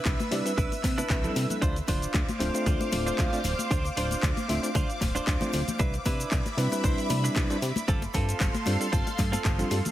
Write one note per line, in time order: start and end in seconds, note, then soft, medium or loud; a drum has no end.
0.00 0.19 D4 medium
0.00 0.20 E4 medium
0.00 0.20 B4 loud
0.00 1.58 B4 medium
0.00 1.58 E5 medium
0.00 1.60 E6 loud
0.05 0.16 C2 medium
0.05 kick loud
0.05 clap loud
0.05 closed hi-hat medium
0.05 muted conga medium
0.05 shaker medium
0.05 shaker soft
0.20 closed hi-hat soft
0.20 high conga loud
0.20 shaker soft
0.31 0.42 C3 medium
0.31 0.42 G3 medium
0.31 0.42 C4 medium
0.31 0.42 D4 medium
0.31 0.42 E4 medium
0.31 0.43 D5 medium
0.31 open hi-hat medium
0.31 muted conga medium
0.31 shaker medium
0.45 0.51 G3 medium
0.45 0.51 C4 medium
0.45 0.52 D4 medium
0.45 0.52 E4 medium
0.45 0.52 B4 medium
0.45 closed hi-hat soft
0.45 shaker medium
0.45 shaker soft
0.57 0.68 C2 medium
0.57 0.72 D4 medium
0.57 0.72 E4 medium
0.57 0.72 B4 medium
0.57 kick loud
0.57 closed hi-hat medium
0.57 shaker medium
0.72 closed hi-hat soft
0.72 muted conga medium
0.72 shaker soft
0.84 1.03 C3 medium
0.84 muted clean electric guitar stroke soft
0.84 kick medium
0.84 clap soft
0.84 open hi-hat loud
0.84 high conga medium
0.84 shaker medium
0.98 1.30 D4 medium
0.98 1.30 E4 medium
0.98 1.30 B4 medium
0.98 closed hi-hat soft
0.98 muted conga medium
0.98 shaker soft
0.98 shaker medium
1.10 1.29 C2 medium
1.10 kick loud
1.10 clap loud
1.10 closed hi-hat medium
1.10 shaker soft
1.10 shaker medium
1.23 1.60 G3 medium
1.23 1.60 C4 medium
1.23 1.61 D4 medium
1.23 1.61 E4 medium
1.23 1.61 A4 medium
1.23 closed hi-hat soft
1.23 low conga loud
1.23 shaker soft
1.36 1.46 C3 medium
1.36 open hi-hat medium
1.36 muted conga medium
1.36 shaker medium
1.50 closed hi-hat soft
1.50 high conga medium
1.50 low conga medium
1.50 shaker soft
1.50 shaker medium
1.62 1.81 D2 medium
1.62 1.76 D4 loud
1.62 1.76 F4 medium
1.62 5.76 C5 medium
1.62 1.76 C5 loud
1.62 5.76 F5 medium
1.62 7.84 D6 loud
1.62 kick loud
1.62 closed hi-hat medium
1.62 shaker medium
1.76 closed hi-hat soft
1.76 shaker soft
1.88 2.07 D1 medium
1.88 2.28 D4 medium
1.88 2.28 F4 medium
1.88 2.29 C5 loud
1.88 kick medium
1.88 open hi-hat loud
1.88 muted conga soft
1.88 shaker medium
2.02 closed hi-hat soft
2.02 shaker soft
2.02 shaker medium
2.14 2.24 D2 loud
2.14 kick loud
2.14 clap loud
2.14 closed hi-hat medium
2.14 muted conga medium
2.14 shaker soft
2.14 shaker medium
2.29 closed hi-hat soft
2.29 high conga loud
2.29 shaker soft
2.39 2.50 D1 medium
2.39 2.51 A3 medium
2.39 2.51 C4 medium
2.39 2.51 D4 medium
2.39 2.51 F4 medium
2.39 2.51 C5 loud
2.39 open hi-hat medium
2.39 shaker medium
2.54 2.89 A3 medium
2.54 2.89 C4 medium
2.54 2.89 D4 medium
2.54 2.90 F4 medium
2.54 2.90 C5 loud
2.54 closed hi-hat soft
2.54 muted conga soft
2.54 shaker soft
2.54 shaker medium
2.66 2.76 D2 medium
2.66 2.80 D4 medium
2.66 2.81 F4 medium
2.66 2.81 C5 medium
2.66 kick loud
2.66 closed hi-hat medium
2.66 shaker soft
2.66 shaker medium
2.81 closed hi-hat soft
2.81 muted conga medium
2.81 shaker soft
2.92 3.12 D1 medium
2.92 3.29 A3 medium
2.92 3.29 C4 medium
2.92 3.29 D4 medium
2.92 3.29 F4 medium
2.92 3.29 C5 medium
2.92 muted clean electric guitar stroke soft
2.92 open hi-hat loud
2.92 high conga medium
2.92 low conga medium
2.92 shaker medium
3.06 3.39 D4 medium
3.06 3.39 F4 medium
3.06 3.39 C5 medium
3.06 closed hi-hat soft
3.06 shaker soft
3.06 shaker medium
3.18 3.29 D2 loud
3.18 kick loud
3.18 clap loud
3.18 closed hi-hat medium
3.18 muted conga medium
3.18 shaker soft
3.18 shaker medium
3.32 3.38 A3 loud
3.32 3.38 C4 medium
3.32 3.39 D4 medium
3.32 3.39 F4 medium
3.32 3.39 D5 loud
3.32 closed hi-hat soft
3.32 shaker soft
3.44 3.55 D1 loud
3.44 open hi-hat medium
3.44 muted conga medium
3.44 shaker medium
3.59 closed hi-hat soft
3.59 high conga medium
3.59 shaker soft
3.59 shaker medium
3.71 3.90 D2 loud
3.71 3.85 D4 loud
3.71 3.85 F4 loud
3.71 3.85 C5 loud
3.71 kick loud
3.71 closed hi-hat medium
3.71 shaker medium
3.85 closed hi-hat soft
3.85 muted conga soft
3.85 shaker soft
3.97 4.16 D1 loud
3.97 4.37 D4 medium
3.97 4.37 F4 medium
3.97 4.38 C5 loud
3.97 open hi-hat loud
3.97 shaker loud
4.11 closed hi-hat soft
4.11 muted conga medium
4.11 shaker soft
4.11 shaker medium
4.23 4.33 D2 loud
4.23 kick loud
4.23 clap loud
4.23 closed hi-hat medium
4.23 shaker medium
4.37 closed hi-hat soft
4.37 high conga medium
4.37 shaker soft
4.48 4.59 D1 medium
4.48 4.59 A3 medium
4.48 4.60 C4 medium
4.48 4.60 D4 medium
4.48 4.60 F4 medium
4.48 4.60 E5 loud
4.48 open hi-hat medium
4.48 muted conga medium
4.48 shaker medium
4.62 4.69 A3 medium
4.62 4.69 C4 medium
4.62 4.69 D4 medium
4.62 4.69 F4 medium
4.62 4.69 C5 medium
4.62 closed hi-hat soft
4.62 shaker soft
4.62 shaker medium
4.75 4.85 D2 medium
4.75 4.89 D4 medium
4.75 4.89 F4 medium
4.75 4.90 C5 medium
4.75 kick loud
4.75 closed hi-hat medium
4.75 muted conga medium
4.75 shaker medium
4.89 closed hi-hat soft
4.89 shaker soft
5.01 5.20 D1 medium
5.01 muted clean electric guitar stroke soft
5.01 kick medium
5.01 clap soft
5.01 open hi-hat loud
5.01 high conga medium
5.01 shaker loud
5.15 5.47 D4 medium
5.15 5.47 F4 medium
5.15 5.48 C5 medium
5.15 closed hi-hat soft
5.15 muted conga medium
5.15 shaker soft
5.15 shaker medium
5.27 5.37 D2 loud
5.27 kick loud
5.27 clap loud
5.27 closed hi-hat medium
5.27 shaker medium
5.41 5.50 A3 medium
5.41 5.50 C4 medium
5.41 5.50 D4 medium
5.41 5.51 F4 medium
5.41 5.51 C5 loud
5.41 closed hi-hat soft
5.41 muted conga medium
5.41 low conga medium
5.41 shaker soft
5.53 5.63 D1 loud
5.53 5.60 A3 medium
5.53 5.60 C4 medium
5.53 5.60 D4 medium
5.53 5.61 F4 medium
5.53 5.61 C5 medium
5.53 open hi-hat medium
5.53 shaker loud
5.68 closed hi-hat soft
5.68 high conga loud
5.68 low conga medium
5.68 shaker soft
5.68 shaker medium
5.79 5.99 C2 loud
5.79 5.94 D4 loud
5.79 5.94 E4 loud
5.79 7.86 E5 medium
5.79 7.86 B5 medium
5.79 kick loud
5.79 closed hi-hat medium
5.79 muted conga medium
5.79 shaker medium
5.80 5.94 B4 loud
5.80 shaker medium
5.93 closed hi-hat soft
5.93 shaker soft
6.05 6.25 C3 medium
6.05 6.46 D4 medium
6.05 6.46 E4 medium
6.05 6.46 B4 loud
6.05 kick medium
6.05 open hi-hat loud
6.05 muted conga medium
6.05 shaker medium
6.20 closed hi-hat soft
6.20 shaker soft
6.20 shaker medium
6.31 6.42 C2 loud
6.31 kick loud
6.31 clap loud
6.31 closed hi-hat medium
6.31 shaker medium
6.46 closed hi-hat soft
6.46 muted conga soft
6.46 high conga medium
6.46 shaker soft
6.57 6.68 C3 medium
6.57 6.68 G3 medium
6.57 6.68 C4 medium
6.57 6.69 D4 medium
6.57 6.69 E4 medium
6.57 6.69 B4 loud
6.57 open hi-hat medium
6.57 shaker medium
6.71 7.07 G3 medium
6.71 7.07 C4 medium
6.71 7.07 D4 medium
6.71 7.07 E4 medium
6.71 7.07 B4 loud
6.71 closed hi-hat soft
6.71 muted conga medium
6.71 shaker soft
6.71 shaker medium
6.84 6.94 C2 medium
6.84 6.98 D4 medium
6.84 6.98 E4 medium
6.84 6.98 C5 medium
6.84 kick loud
6.84 closed hi-hat medium
6.84 shaker medium
6.98 closed hi-hat soft
6.98 shaker soft
7.09 7.29 C3 medium
7.09 7.46 G3 medium
7.09 7.47 C4 medium
7.09 7.47 D4 medium
7.09 7.47 E4 medium
7.09 7.47 B5 medium
7.09 muted clean electric guitar stroke soft
7.09 open hi-hat loud
7.09 muted conga medium
7.09 high conga medium
7.09 low conga medium
7.09 shaker medium
7.24 7.56 D4 medium
7.24 7.56 E4 medium
7.24 7.56 B4 medium
7.24 closed hi-hat soft
7.24 shaker soft
7.24 shaker medium
7.36 7.46 C2 loud
7.36 kick loud
7.36 clap loud
7.36 closed hi-hat medium
7.36 muted conga medium
7.36 shaker soft
7.36 shaker medium
7.50 7.56 G3 loud
7.50 7.56 C4 medium
7.50 7.56 D4 medium
7.50 7.56 E4 medium
7.50 7.56 C5 loud
7.50 closed hi-hat soft
7.50 shaker soft
7.62 7.72 C3 loud
7.62 open hi-hat medium
7.62 shaker medium
7.76 closed hi-hat soft
7.76 muted conga medium
7.76 high conga medium
7.76 shaker soft
7.76 shaker medium
7.88 8.07 G1 loud
7.88 8.02 C4 loud
7.88 8.02 F4 medium
7.88 9.91 A4 medium
7.88 8.03 A4 loud
7.88 9.91 F5 medium
7.88 9.91 C6 medium
7.88 kick loud
7.88 closed hi-hat medium
7.88 shaker medium
7.89 shaker medium
8.02 closed hi-hat soft
8.02 muted conga medium
8.02 shaker soft
8.14 8.33 G2 loud
8.14 8.54 C4 medium
8.14 8.54 F4 medium
8.14 8.55 A4 loud
8.14 kick medium
8.14 open hi-hat loud
8.14 shaker medium
8.29 closed hi-hat soft
8.29 shaker soft
8.29 shaker medium
8.40 8.50 G1 medium
8.40 kick loud
8.40 clap loud
8.40 closed hi-hat medium
8.40 muted conga medium
8.40 shaker medium
8.54 closed hi-hat soft
8.54 high conga medium
8.54 shaker soft
8.66 8.77 G2 medium
8.66 8.77 G3 medium
8.66 8.77 C4 medium
8.66 8.77 D4 medium
8.66 8.77 F4 medium
8.66 8.77 C5 loud
8.66 open hi-hat medium
8.66 muted conga medium
8.66 shaker medium
8.80 8.86 G3 medium
8.80 8.86 C4 medium
8.80 8.86 D4 medium
8.80 8.87 F4 medium
8.80 8.87 A4 medium
8.80 closed hi-hat soft
8.80 shaker soft
8.80 shaker medium
8.92 9.03 G1 medium
8.92 9.06 C4 medium
8.92 9.07 F4 medium
8.92 9.07 A4 medium
8.92 kick loud
8.92 closed hi-hat medium
8.92 shaker medium
9.07 closed hi-hat soft
9.07 muted conga medium
9.07 shaker soft
9.18 9.38 G2 medium
9.18 muted clean electric guitar stroke soft
9.18 kick medium
9.18 clap soft
9.18 open hi-hat loud
9.18 high conga medium
9.18 shaker loud
9.32 9.65 C4 medium
9.32 9.65 F4 medium
9.32 9.65 A4 medium
9.32 closed hi-hat soft
9.32 muted conga medium
9.32 shaker soft
9.32 shaker medium
9.45 9.64 G1 medium
9.45 kick loud
9.45 clap loud
9.45 closed hi-hat medium
9.45 shaker medium
9.59 9.68 G3 medium
9.59 9.68 C4 medium
9.59 9.68 D4 medium
9.59 9.68 F4 medium
9.59 9.68 A4 loud
9.59 closed hi-hat soft
9.59 low conga loud
9.59 shaker soft
9.70 9.81 G2 medium
9.70 9.78 G3 medium
9.70 9.78 C4 medium
9.70 9.78 D4 medium
9.70 9.78 F4 medium
9.70 9.78 A4 medium
9.70 open hi-hat medium
9.70 muted conga medium
9.70 shaker medium
9.85 closed hi-hat soft
9.85 high conga medium
9.85 low conga medium
9.85 shaker medium
9.85 shaker soft